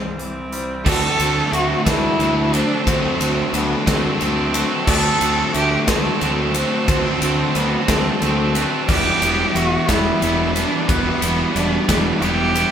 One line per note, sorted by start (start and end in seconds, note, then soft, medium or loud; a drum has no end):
0.00 0.82 C2 medium
0.00 0.53 C3 medium
0.00 0.17 E3 medium
0.00 0.51 G3 medium
0.00 0.17 C4 medium
0.00 0.86 C4 medium
0.00 0.19 C5 medium
0.18 0.86 E3 soft
0.18 0.82 C4 medium
0.18 0.53 D5 medium
0.18 closed hi-hat soft
0.52 0.86 G3 medium
0.52 0.86 C5 medium
0.52 closed hi-hat medium
0.85 1.07 D2 medium
0.85 1.52 D3 medium
0.85 1.22 A3 medium
0.85 1.20 C4 loud
0.85 1.18 F#4 loud
0.85 1.55 A4 loud
0.85 1.18 A4 loud
0.85 1.53 D5 medium
0.85 kick loud
0.85 crash loud
1.18 1.40 D2 medium
1.18 1.53 A3 medium
1.18 1.54 C4 medium
1.18 1.54 F#4 medium
1.18 1.85 A4 medium
1.18 ride medium
1.52 1.73 D2 medium
1.52 2.19 D3 medium
1.52 1.89 A3 medium
1.52 1.88 C4 medium
1.52 1.86 F#4 loud
1.52 1.85 F#4 medium
1.52 1.86 E5 medium
1.52 ride medium
1.85 2.07 D2 medium
1.85 2.59 D3 medium
1.85 2.21 C4 medium
1.85 2.55 E4 loud
1.85 2.21 F#4 medium
1.85 2.22 A4 medium
1.85 2.53 D5 medium
1.85 kick medium
1.85 snare loud
1.85 ride loud
1.90 2.20 A3 medium
2.19 2.61 D2 medium
2.19 2.86 D3 medium
2.19 2.56 A3 medium
2.19 2.54 C4 medium
2.19 2.51 F#4 medium
2.19 2.52 A4 medium
2.19 ride medium
2.53 2.87 A3 medium
2.53 2.89 C4 medium
2.53 2.87 D4 loud
2.53 2.88 F#4 medium
2.53 2.88 A4 medium
2.53 2.86 C5 medium
2.53 ride medium
2.86 3.07 D2 loud
2.86 3.52 D3 medium
2.86 3.22 A3 loud
2.86 3.50 C4 loud
2.86 3.21 C4 loud
2.86 3.18 F#4 loud
2.86 3.19 A4 loud
2.86 3.54 C5 loud
2.86 kick loud
2.86 ride loud
3.19 3.41 D2 medium
3.19 3.53 A3 medium
3.19 3.55 C4 medium
3.19 3.55 F#4 medium
3.19 3.86 A4 medium
3.19 ride medium
3.53 3.74 D2 medium
3.53 4.19 D3 medium
3.53 3.89 A3 medium
3.53 3.86 B3 loud
3.53 3.87 C4 medium
3.53 3.85 F#4 medium
3.53 3.85 D5 medium
3.53 ride medium
3.86 4.08 D2 medium
3.86 4.59 D3 medium
3.86 4.21 A3 medium
3.86 4.21 C4 medium
3.86 4.19 C4 medium
3.86 4.21 F#4 medium
3.86 4.23 A4 loud
3.86 4.54 D5 medium
3.86 kick medium
3.86 snare loud
3.86 ride loud
4.20 4.63 D2 loud
4.20 4.87 D3 medium
4.20 4.57 A3 medium
4.20 4.84 C4 loud
4.20 4.55 C4 medium
4.20 4.52 F#4 medium
4.20 4.53 A4 loud
4.20 ride medium
4.53 4.88 A3 medium
4.53 4.89 C4 medium
4.53 4.90 F#4 medium
4.53 4.89 A4 medium
4.53 4.87 B4 medium
4.53 ride medium
4.87 5.08 D2 loud
4.87 5.53 D3 loud
4.87 5.24 A3 medium
4.87 5.22 C4 loud
4.87 5.20 F#4 loud
4.87 5.51 A4 loud
4.87 5.19 A4 loud
4.87 5.54 D5 loud
4.87 kick loud
4.87 crash loud
5.19 5.42 D2 loud
5.19 5.55 C4 medium
5.19 5.56 F#4 medium
5.19 5.86 A4 medium
5.19 ride medium
5.24 5.54 A3 medium
5.53 5.75 D2 medium
5.53 6.19 D3 medium
5.53 5.89 A3 medium
5.53 5.87 C4 medium
5.53 5.85 F#4 medium
5.53 5.86 G4 loud
5.53 5.87 E5 medium
5.53 ride medium
5.87 6.08 D2 loud
5.87 6.56 D3 medium
5.87 6.21 A3 medium
5.87 6.51 C4 medium
5.87 6.21 C4 medium
5.87 6.22 F#4 medium
5.87 6.23 A4 medium
5.87 6.54 D5 medium
5.87 kick medium
5.87 snare loud
5.87 ride loud
6.20 6.63 D2 medium
6.20 6.86 D3 medium
6.20 6.56 A3 medium
6.20 6.54 C4 loud
6.20 6.53 F#4 loud
6.20 6.53 A4 medium
6.20 ride medium
6.54 6.88 A3 medium
6.54 6.86 C4 medium
6.54 6.88 C4 medium
6.54 6.90 F#4 medium
6.54 6.89 A4 medium
6.54 6.86 C5 medium
6.54 ride medium
6.87 7.09 D2 loud
6.87 7.54 D3 medium
6.87 7.24 A3 loud
6.87 7.57 C4 loud
6.87 7.22 C4 loud
6.87 7.20 F#4 loud
6.87 7.20 A4 loud
6.87 7.55 C5 loud
6.87 kick loud
6.87 ride loud
7.21 7.42 D2 medium
7.21 7.55 A3 medium
7.21 7.56 C4 medium
7.21 7.57 F#4 medium
7.21 7.87 A4 medium
7.21 ride medium
7.54 7.76 D2 medium
7.54 8.20 D3 medium
7.54 7.91 A3 medium
7.54 7.88 B3 loud
7.54 7.89 C4 medium
7.54 7.86 D5 medium
7.54 ride medium
7.59 7.87 F#4 medium
7.88 8.09 D2 loud
7.88 8.57 D3 medium
7.88 8.20 C4 medium
7.88 8.23 C4 medium
7.88 8.24 F#4 medium
7.88 8.23 A4 medium
7.88 8.55 D5 medium
7.88 kick medium
7.88 snare loud
7.88 ride loud
7.92 8.21 A3 medium
8.22 8.63 D2 medium
8.22 8.87 D3 medium
8.22 8.56 A3 medium
8.22 8.85 C4 medium
8.22 8.55 C4 medium
8.22 8.53 F#4 medium
8.22 8.53 A4 medium
8.22 ride medium
8.54 8.88 A3 medium
8.54 8.87 C4 medium
8.54 8.86 F#4 medium
8.54 8.86 A4 medium
8.54 8.89 B4 medium
8.54 ride medium
8.88 9.09 E1 medium
8.88 9.54 E3 medium
8.88 9.24 G3 medium
8.88 9.23 B3 loud
8.88 9.21 E4 medium
8.88 9.57 G4 loud
8.88 9.55 D5 loud
8.88 kick loud
8.88 crash loud
9.21 9.42 E1 loud
9.21 9.55 G3 medium
9.21 9.56 B3 medium
9.21 9.57 E4 medium
9.21 ride medium
9.54 9.76 E1 medium
9.54 10.21 E3 medium
9.54 9.91 G3 medium
9.54 9.89 B3 medium
9.54 9.88 E4 medium
9.54 9.92 F#4 loud
9.54 9.89 E5 medium
9.54 ride medium
9.88 10.09 E1 loud
9.88 10.20 E3 medium
9.88 10.22 G3 medium
9.88 10.23 B3 medium
9.88 10.24 E4 medium
9.88 10.56 E4 medium
9.88 10.56 D5 medium
9.88 kick medium
9.88 snare loud
9.88 ride loud
10.21 10.63 E1 medium
10.21 10.88 E3 medium
10.21 10.58 G3 medium
10.21 10.55 B3 medium
10.21 10.54 E4 medium
10.21 ride medium
10.55 10.89 G3 medium
10.55 10.89 B3 medium
10.55 10.90 D4 loud
10.55 10.91 E4 medium
10.55 10.87 B4 medium
10.55 ride medium
10.88 11.10 E1 medium
10.88 11.55 E3 loud
10.88 11.25 G3 loud
10.88 11.55 B3 loud
10.88 11.23 B3 loud
10.88 11.22 E4 loud
10.88 11.56 B4 loud
10.88 kick loud
10.88 ride loud
11.22 11.43 E1 loud
11.22 11.56 G3 medium
11.22 11.56 B3 medium
11.22 11.58 E4 medium
11.22 ride loud
11.55 11.76 E1 loud
11.55 12.21 E3 medium
11.55 11.92 G3 medium
11.55 11.89 B3 medium
11.55 11.87 D4 medium
11.55 11.88 E4 medium
11.55 11.88 D5 medium
11.55 ride medium
11.89 12.09 E1 loud
11.89 12.20 E3 medium
11.89 12.22 G3 medium
11.89 12.22 B3 medium
11.89 12.23 D4 medium
11.89 12.24 E4 medium
11.89 12.56 D5 loud
11.89 kick medium
11.89 snare loud
11.89 ride loud
12.21 12.63 E1 loud
12.21 12.71 E3 medium
12.21 12.57 G3 medium
12.21 12.55 B3 medium
12.21 12.54 E4 medium
12.21 12.71 G4 loud
12.21 ride medium
12.54 12.71 G3 medium
12.54 12.71 B3 medium
12.54 12.71 E4 medium
12.54 12.71 B4 medium
12.54 ride medium